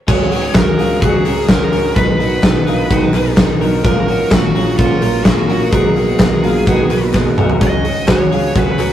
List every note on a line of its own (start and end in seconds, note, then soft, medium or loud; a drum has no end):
0.07 0.47 C#2 loud
0.07 0.31 C#3 medium
0.07 1.94 C#3 medium
0.07 0.31 F#3 medium
0.07 1.94 G#3 medium
0.07 0.32 C#4 medium
0.07 1.94 F#4 medium
0.07 0.31 F#4 medium
0.07 0.31 G#4 loud
0.07 0.29 G#4 medium
0.07 0.53 C#5 loud
0.07 kick loud
0.07 crash medium
0.30 0.55 C#4 soft
0.30 0.76 D#4 medium
0.30 0.76 F#4 medium
0.30 0.56 F#4 soft
0.30 0.55 G#4 soft
0.30 open hi-hat medium
0.54 0.74 C#2 loud
0.54 0.79 F#3 medium
0.54 0.79 C#4 medium
0.54 0.79 F#4 medium
0.54 0.77 G#4 medium
0.54 1.01 A#4 loud
0.54 kick loud
0.54 snare loud
0.54 clap medium
0.54 hi-hat pedal medium
0.54 ride soft
0.78 0.98 C#2 medium
0.78 1.02 C#4 soft
0.78 1.02 F4 medium
0.78 1.03 F#4 soft
0.78 1.02 G#4 medium
0.78 open hi-hat medium
1.02 1.21 C#2 loud
1.02 1.26 C#3 medium
1.02 1.26 F#3 medium
1.02 1.26 C#4 medium
1.02 1.25 F#4 medium
1.02 1.46 G#4 medium
1.02 1.23 G#4 medium
1.02 kick loud
1.02 hi-hat pedal medium
1.02 ride medium
1.25 1.45 C#2 medium
1.25 1.48 C#4 soft
1.25 1.50 F#4 medium
1.25 1.49 F#4 soft
1.25 1.49 G#4 soft
1.25 1.49 A#4 medium
1.25 clap medium
1.25 open hi-hat medium
1.48 1.69 C#2 medium
1.48 1.72 F#3 medium
1.48 1.73 C#4 medium
1.48 1.73 F#4 medium
1.48 1.72 G#4 medium
1.48 1.71 G#4 medium
1.48 1.95 A#4 loud
1.48 kick loud
1.48 snare loud
1.48 clap medium
1.48 hi-hat pedal medium
1.48 ride medium
1.72 1.92 C#2 loud
1.72 1.96 C#4 medium
1.72 1.97 F#4 medium
1.72 1.96 G#4 medium
1.72 1.96 A#4 medium
1.72 open hi-hat medium
1.96 2.35 B1 medium
1.96 3.83 A#2 medium
1.96 2.19 B2 medium
1.96 3.82 B2 medium
1.96 2.20 D#3 medium
1.96 2.20 F#3 medium
1.96 2.20 B3 medium
1.96 3.82 D#4 medium
1.96 2.20 D#4 medium
1.96 2.19 D#4 medium
1.96 2.20 G#4 medium
1.96 2.17 A#4 medium
1.96 3.33 B4 loud
1.96 kick loud
1.96 hi-hat pedal medium
1.96 ride medium
2.18 2.41 F#3 soft
2.18 2.42 B3 soft
2.18 2.43 D#4 soft
2.18 2.65 D#4 medium
2.18 2.64 F#4 medium
2.18 2.43 A#4 medium
2.18 open hi-hat medium
2.42 2.63 B1 loud
2.42 2.66 F#3 medium
2.42 2.67 B3 medium
2.42 2.66 D#4 medium
2.42 2.64 A#4 medium
2.42 kick loud
2.42 snare loud
2.42 clap medium
2.42 hi-hat pedal medium
2.42 ride medium
2.65 2.86 B1 medium
2.65 2.89 F#3 soft
2.65 2.90 B3 medium
2.65 2.90 D#4 medium
2.65 2.90 F4 medium
2.65 2.91 G#4 medium
2.65 2.90 A#4 medium
2.65 open hi-hat medium
2.89 3.10 B1 loud
2.89 3.13 B2 medium
2.89 3.14 D#3 medium
2.89 3.14 F#3 medium
2.89 3.14 B3 medium
2.89 3.13 D#4 medium
2.89 3.14 D#4 medium
2.89 3.14 F#4 medium
2.89 3.12 A#4 loud
2.89 kick loud
2.89 hi-hat pedal medium
2.89 ride medium
3.13 3.33 B1 loud
3.13 3.35 F#3 soft
3.13 3.36 B3 medium
3.13 3.37 D#4 medium
3.13 3.36 G#4 medium
3.13 3.37 A#4 medium
3.13 3.37 B4 medium
3.13 clap medium
3.13 open hi-hat medium
3.36 3.57 B1 medium
3.36 3.60 F#3 medium
3.36 3.61 B3 medium
3.36 3.61 D#4 medium
3.36 3.60 D#4 medium
3.36 3.61 G#4 medium
3.36 3.59 A#4 medium
3.36 kick loud
3.36 snare loud
3.36 clap medium
3.36 hi-hat pedal medium
3.36 ride medium
3.60 3.80 B1 loud
3.60 3.83 F#3 medium
3.60 3.85 B3 medium
3.60 3.85 D#4 medium
3.60 3.85 F#4 medium
3.60 3.84 A#4 medium
3.60 open hi-hat medium
3.83 4.23 A#1 loud
3.83 4.08 A#2 medium
3.83 4.08 F#3 medium
3.83 5.71 F#3 medium
3.83 4.08 A#3 medium
3.83 7.58 A#3 medium
3.83 4.08 C#4 medium
3.83 4.07 F4 medium
3.83 4.08 F4 medium
3.83 4.08 G#4 medium
3.83 4.33 A#4 loud
3.83 5.71 A#4 loud
3.83 4.06 A#4 medium
3.83 kick loud
3.83 hi-hat pedal medium
3.83 ride medium
4.07 4.29 A#3 soft
4.07 4.30 C#4 soft
4.07 4.53 D#4 medium
4.07 4.31 F4 soft
4.07 4.52 F#4 medium
4.07 4.31 A#4 medium
4.07 open hi-hat medium
4.30 4.51 A#1 loud
4.30 4.54 A#3 medium
4.30 4.55 C#4 medium
4.30 4.55 F4 medium
4.30 4.77 F#4 loud
4.30 4.53 A#4 medium
4.30 kick loud
4.30 snare loud
4.30 clap medium
4.30 hi-hat pedal medium
4.30 ride soft
4.54 4.74 A#1 loud
4.54 4.78 A#3 soft
4.54 4.79 C#4 medium
4.54 4.79 F4 medium
4.54 4.78 F4 medium
4.54 4.79 G#4 medium
4.54 4.78 A#4 medium
4.54 open hi-hat medium
4.78 4.98 A#1 loud
4.78 5.02 A#2 medium
4.78 5.02 F#3 medium
4.78 5.02 A#3 medium
4.78 5.03 C#4 medium
4.78 5.02 C#4 medium
4.78 5.24 F4 medium
4.78 5.01 F4 medium
4.78 5.02 F#4 medium
4.78 4.99 A#4 loud
4.78 kick loud
4.78 hi-hat pedal medium
4.78 ride medium
5.01 5.21 A#1 loud
5.01 5.23 A#3 soft
5.01 5.25 C#4 soft
5.01 5.26 F4 soft
5.01 5.26 F#4 medium
5.01 5.25 A#4 soft
5.01 5.25 A#4 medium
5.01 clap medium
5.01 open hi-hat medium
5.24 5.45 A#1 medium
5.24 5.49 A#3 medium
5.24 5.49 C#4 medium
5.24 5.50 F4 medium
5.24 5.49 F4 medium
5.24 5.69 F#4 medium
5.24 5.49 G#4 medium
5.24 5.47 A#4 medium
5.24 kick loud
5.24 snare loud
5.24 clap medium
5.24 hi-hat pedal medium
5.24 ride medium
5.48 5.69 A#1 loud
5.48 5.73 A#3 soft
5.48 5.73 C#4 medium
5.48 5.73 F4 medium
5.48 5.73 F#4 medium
5.48 5.72 A#4 medium
5.48 5.73 A#4 medium
5.48 open hi-hat medium
5.71 6.11 B1 medium
5.71 5.96 B2 medium
5.71 7.59 B2 medium
5.71 5.97 D#3 medium
5.71 5.97 F#3 medium
5.71 5.97 B3 medium
5.71 7.59 D#4 medium
5.71 5.96 D#4 medium
5.71 5.96 F#4 loud
5.71 7.09 G#4 medium
5.71 5.96 G#4 loud
5.71 5.94 A#4 medium
5.71 kick loud
5.71 hi-hat pedal medium
5.71 ride medium
5.96 6.18 F#3 soft
5.96 6.19 B3 soft
5.96 6.41 D#4 medium
5.96 6.41 F#4 medium
5.96 6.20 F#4 soft
5.96 6.20 A#4 medium
5.96 open hi-hat medium
6.19 6.39 B1 loud
6.19 6.43 F#3 medium
6.19 6.44 B3 medium
6.19 6.43 F#4 medium
6.19 6.41 A#4 medium
6.19 kick loud
6.19 snare loud
6.19 clap medium
6.19 hi-hat pedal medium
6.19 ride medium
6.42 6.63 B1 loud
6.42 6.66 F#3 medium
6.42 6.67 B3 medium
6.42 6.68 F4 medium
6.42 6.67 F#4 medium
6.42 6.67 G#4 medium
6.42 6.67 A#4 medium
6.42 open hi-hat medium
6.67 6.86 B1 loud
6.67 6.90 B2 medium
6.67 6.91 D#3 loud
6.67 6.91 F#3 medium
6.67 6.91 B3 loud
6.67 6.91 D#4 medium
6.67 6.91 F#4 medium
6.67 6.91 F#4 loud
6.67 6.89 A#4 medium
6.67 kick loud
6.67 hi-hat pedal medium
6.67 ride medium
6.90 7.10 B1 medium
6.90 7.13 F#3 soft
6.90 7.14 B3 medium
6.90 7.15 F#4 medium
6.90 7.13 G#4 medium
6.90 7.14 A#4 medium
6.90 7.14 B4 medium
6.90 clap medium
6.90 open hi-hat medium
7.14 7.33 B1 medium
7.14 7.38 F#3 medium
7.14 7.38 B3 medium
7.14 7.38 D#4 medium
7.14 7.38 F#4 medium
7.14 7.38 G#4 medium
7.14 7.37 A#4 medium
7.14 kick loud
7.14 snare medium
7.14 clap medium
7.38 7.57 B1 medium
7.38 7.60 F#3 soft
7.38 7.62 B3 medium
7.38 7.61 F#4 medium
7.38 7.62 F#4 medium
7.38 7.61 A#4 medium
7.38 mid tom medium
7.49 floor tom medium
7.61 8.00 C#2 loud
7.61 8.93 C#3 medium
7.61 7.85 C#3 medium
7.61 7.85 F#3 medium
7.61 8.93 G#3 medium
7.61 7.85 C#4 medium
7.61 8.93 F#4 medium
7.61 7.85 F#4 medium
7.61 7.84 G#4 loud
7.61 7.83 G#4 medium
7.61 8.10 D#5 loud
7.61 kick loud
7.61 hi-hat pedal medium
7.61 ride medium
7.84 8.08 C#4 soft
7.84 8.29 D#4 medium
7.84 8.29 F#4 medium
7.84 8.09 F#4 soft
7.84 8.08 G#4 soft
7.84 open hi-hat medium
8.08 8.27 C#2 loud
8.08 8.32 F#3 medium
8.08 8.32 C#4 medium
8.08 8.32 F#4 medium
8.08 8.30 G#4 medium
8.08 8.58 C#5 loud
8.08 kick loud
8.08 snare loud
8.08 clap medium
8.08 hi-hat pedal medium
8.08 ride soft
8.31 8.51 C#2 medium
8.31 8.54 C#4 soft
8.31 8.55 F4 medium
8.31 8.55 F#4 medium
8.31 8.55 G#4 medium
8.31 open hi-hat medium
8.54 8.75 C#2 loud
8.54 8.78 C#3 medium
8.54 8.79 F#3 medium
8.54 8.79 C#4 medium
8.54 8.78 F#4 medium
8.54 8.76 G#4 medium
8.54 8.93 B4 loud
8.54 kick loud
8.54 hi-hat pedal medium
8.54 ride medium
8.78 8.93 C#2 medium
8.78 8.93 C#4 soft
8.78 8.93 F#4 medium
8.78 8.93 F#4 soft
8.78 8.93 G#4 medium
8.78 8.93 A#4 medium
8.78 clap medium
8.78 open hi-hat medium